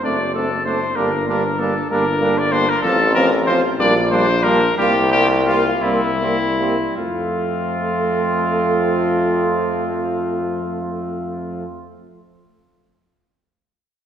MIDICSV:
0, 0, Header, 1, 6, 480
1, 0, Start_track
1, 0, Key_signature, -1, "major"
1, 0, Tempo, 625000
1, 750, Time_signature, 6, 3, 24, 8
1, 2667, Tempo, 655738
1, 3627, Tempo, 691244
1, 4107, Tempo, 750939
1, 5067, Tempo, 729040
1, 7467, Tempo, 715990
1, 9768, End_track
2, 0, Start_track
2, 0, Title_t, "Trumpet"
2, 0, Program_c, 0, 56
2, 35, Note_on_c, 0, 74, 109
2, 261, Note_off_c, 0, 74, 0
2, 266, Note_on_c, 0, 69, 105
2, 499, Note_off_c, 0, 69, 0
2, 504, Note_on_c, 0, 72, 105
2, 738, Note_on_c, 0, 70, 113
2, 750, Note_off_c, 0, 72, 0
2, 984, Note_off_c, 0, 70, 0
2, 989, Note_on_c, 0, 70, 104
2, 1225, Note_on_c, 0, 69, 110
2, 1237, Note_off_c, 0, 70, 0
2, 1463, Note_off_c, 0, 69, 0
2, 1468, Note_on_c, 0, 70, 119
2, 1831, Note_on_c, 0, 74, 116
2, 1843, Note_off_c, 0, 70, 0
2, 1936, Note_on_c, 0, 72, 127
2, 1947, Note_off_c, 0, 74, 0
2, 2071, Note_on_c, 0, 70, 127
2, 2082, Note_off_c, 0, 72, 0
2, 2165, Note_off_c, 0, 70, 0
2, 2170, Note_on_c, 0, 69, 126
2, 2413, Note_off_c, 0, 69, 0
2, 2417, Note_on_c, 0, 70, 119
2, 2528, Note_off_c, 0, 70, 0
2, 2660, Note_on_c, 0, 72, 117
2, 2766, Note_off_c, 0, 72, 0
2, 2906, Note_on_c, 0, 74, 125
2, 3011, Note_off_c, 0, 74, 0
2, 3132, Note_on_c, 0, 72, 127
2, 3373, Note_on_c, 0, 70, 127
2, 3384, Note_off_c, 0, 72, 0
2, 3617, Note_off_c, 0, 70, 0
2, 3621, Note_on_c, 0, 67, 127
2, 3858, Note_off_c, 0, 67, 0
2, 3862, Note_on_c, 0, 67, 127
2, 3972, Note_off_c, 0, 67, 0
2, 4099, Note_on_c, 0, 65, 114
2, 4326, Note_on_c, 0, 64, 111
2, 4336, Note_off_c, 0, 65, 0
2, 5058, Note_off_c, 0, 64, 0
2, 5062, Note_on_c, 0, 65, 107
2, 8148, Note_off_c, 0, 65, 0
2, 9768, End_track
3, 0, Start_track
3, 0, Title_t, "Trumpet"
3, 0, Program_c, 1, 56
3, 21, Note_on_c, 1, 62, 80
3, 131, Note_off_c, 1, 62, 0
3, 264, Note_on_c, 1, 62, 73
3, 373, Note_off_c, 1, 62, 0
3, 507, Note_on_c, 1, 62, 80
3, 616, Note_off_c, 1, 62, 0
3, 744, Note_on_c, 1, 62, 86
3, 855, Note_off_c, 1, 62, 0
3, 991, Note_on_c, 1, 62, 83
3, 1100, Note_off_c, 1, 62, 0
3, 1237, Note_on_c, 1, 62, 84
3, 1343, Note_off_c, 1, 62, 0
3, 1477, Note_on_c, 1, 62, 85
3, 1582, Note_off_c, 1, 62, 0
3, 1716, Note_on_c, 1, 62, 86
3, 1820, Note_off_c, 1, 62, 0
3, 1944, Note_on_c, 1, 62, 84
3, 2051, Note_off_c, 1, 62, 0
3, 2187, Note_on_c, 1, 65, 92
3, 2295, Note_off_c, 1, 65, 0
3, 2429, Note_on_c, 1, 65, 97
3, 2538, Note_off_c, 1, 65, 0
3, 2675, Note_on_c, 1, 65, 91
3, 2778, Note_off_c, 1, 65, 0
3, 2904, Note_on_c, 1, 62, 92
3, 3009, Note_off_c, 1, 62, 0
3, 3142, Note_on_c, 1, 62, 91
3, 3250, Note_off_c, 1, 62, 0
3, 3384, Note_on_c, 1, 62, 86
3, 3495, Note_off_c, 1, 62, 0
3, 3636, Note_on_c, 1, 65, 92
3, 3742, Note_off_c, 1, 65, 0
3, 3877, Note_on_c, 1, 65, 91
3, 3983, Note_off_c, 1, 65, 0
3, 4114, Note_on_c, 1, 65, 92
3, 4216, Note_off_c, 1, 65, 0
3, 4348, Note_on_c, 1, 60, 82
3, 4450, Note_off_c, 1, 60, 0
3, 4588, Note_on_c, 1, 60, 81
3, 4690, Note_off_c, 1, 60, 0
3, 4833, Note_on_c, 1, 60, 73
3, 4935, Note_off_c, 1, 60, 0
3, 5073, Note_on_c, 1, 60, 86
3, 8159, Note_off_c, 1, 60, 0
3, 9768, End_track
4, 0, Start_track
4, 0, Title_t, "French horn"
4, 0, Program_c, 2, 60
4, 22, Note_on_c, 2, 60, 79
4, 131, Note_off_c, 2, 60, 0
4, 260, Note_on_c, 2, 60, 74
4, 370, Note_off_c, 2, 60, 0
4, 497, Note_on_c, 2, 60, 74
4, 608, Note_off_c, 2, 60, 0
4, 735, Note_on_c, 2, 58, 85
4, 848, Note_off_c, 2, 58, 0
4, 984, Note_on_c, 2, 58, 79
4, 1095, Note_off_c, 2, 58, 0
4, 1219, Note_on_c, 2, 58, 78
4, 1329, Note_off_c, 2, 58, 0
4, 1462, Note_on_c, 2, 58, 85
4, 1570, Note_off_c, 2, 58, 0
4, 1699, Note_on_c, 2, 58, 90
4, 1807, Note_off_c, 2, 58, 0
4, 1938, Note_on_c, 2, 58, 89
4, 2046, Note_off_c, 2, 58, 0
4, 2182, Note_on_c, 2, 60, 91
4, 2291, Note_off_c, 2, 60, 0
4, 2428, Note_on_c, 2, 60, 96
4, 2537, Note_off_c, 2, 60, 0
4, 2667, Note_on_c, 2, 60, 97
4, 2772, Note_off_c, 2, 60, 0
4, 2904, Note_on_c, 2, 58, 102
4, 3009, Note_off_c, 2, 58, 0
4, 3135, Note_on_c, 2, 58, 90
4, 3244, Note_off_c, 2, 58, 0
4, 3385, Note_on_c, 2, 58, 88
4, 3496, Note_off_c, 2, 58, 0
4, 3630, Note_on_c, 2, 58, 101
4, 3737, Note_off_c, 2, 58, 0
4, 3866, Note_on_c, 2, 58, 85
4, 3975, Note_off_c, 2, 58, 0
4, 4106, Note_on_c, 2, 58, 94
4, 4209, Note_off_c, 2, 58, 0
4, 4338, Note_on_c, 2, 58, 92
4, 4440, Note_off_c, 2, 58, 0
4, 4580, Note_on_c, 2, 58, 81
4, 4682, Note_off_c, 2, 58, 0
4, 4823, Note_on_c, 2, 58, 76
4, 4926, Note_off_c, 2, 58, 0
4, 5069, Note_on_c, 2, 57, 86
4, 8156, Note_off_c, 2, 57, 0
4, 9768, End_track
5, 0, Start_track
5, 0, Title_t, "Trombone"
5, 0, Program_c, 3, 57
5, 35, Note_on_c, 3, 57, 76
5, 142, Note_off_c, 3, 57, 0
5, 272, Note_on_c, 3, 57, 68
5, 379, Note_off_c, 3, 57, 0
5, 504, Note_on_c, 3, 57, 77
5, 614, Note_off_c, 3, 57, 0
5, 746, Note_on_c, 3, 55, 81
5, 856, Note_off_c, 3, 55, 0
5, 988, Note_on_c, 3, 55, 82
5, 1098, Note_off_c, 3, 55, 0
5, 1234, Note_on_c, 3, 55, 73
5, 1341, Note_off_c, 3, 55, 0
5, 1466, Note_on_c, 3, 55, 88
5, 1573, Note_off_c, 3, 55, 0
5, 1696, Note_on_c, 3, 55, 80
5, 1804, Note_off_c, 3, 55, 0
5, 1940, Note_on_c, 3, 55, 89
5, 2048, Note_off_c, 3, 55, 0
5, 2175, Note_on_c, 3, 53, 89
5, 2285, Note_off_c, 3, 53, 0
5, 2423, Note_on_c, 3, 53, 93
5, 2532, Note_off_c, 3, 53, 0
5, 2669, Note_on_c, 3, 53, 86
5, 2774, Note_off_c, 3, 53, 0
5, 2900, Note_on_c, 3, 55, 94
5, 3006, Note_off_c, 3, 55, 0
5, 3136, Note_on_c, 3, 55, 84
5, 3245, Note_off_c, 3, 55, 0
5, 3371, Note_on_c, 3, 55, 87
5, 3485, Note_off_c, 3, 55, 0
5, 3621, Note_on_c, 3, 55, 93
5, 3730, Note_off_c, 3, 55, 0
5, 3863, Note_on_c, 3, 55, 79
5, 3972, Note_off_c, 3, 55, 0
5, 4100, Note_on_c, 3, 55, 89
5, 4203, Note_off_c, 3, 55, 0
5, 4338, Note_on_c, 3, 55, 91
5, 4440, Note_off_c, 3, 55, 0
5, 4576, Note_on_c, 3, 55, 79
5, 4678, Note_off_c, 3, 55, 0
5, 4820, Note_on_c, 3, 55, 75
5, 4922, Note_off_c, 3, 55, 0
5, 5065, Note_on_c, 3, 53, 82
5, 8152, Note_off_c, 3, 53, 0
5, 9768, End_track
6, 0, Start_track
6, 0, Title_t, "Bass trombone"
6, 0, Program_c, 4, 57
6, 26, Note_on_c, 4, 30, 91
6, 663, Note_off_c, 4, 30, 0
6, 748, Note_on_c, 4, 31, 95
6, 1386, Note_off_c, 4, 31, 0
6, 1472, Note_on_c, 4, 31, 100
6, 2097, Note_off_c, 4, 31, 0
6, 2176, Note_on_c, 4, 33, 121
6, 2815, Note_off_c, 4, 33, 0
6, 2904, Note_on_c, 4, 34, 117
6, 3541, Note_off_c, 4, 34, 0
6, 3627, Note_on_c, 4, 36, 127
6, 4256, Note_off_c, 4, 36, 0
6, 4335, Note_on_c, 4, 36, 104
6, 4982, Note_off_c, 4, 36, 0
6, 5070, Note_on_c, 4, 41, 94
6, 8156, Note_off_c, 4, 41, 0
6, 9768, End_track
0, 0, End_of_file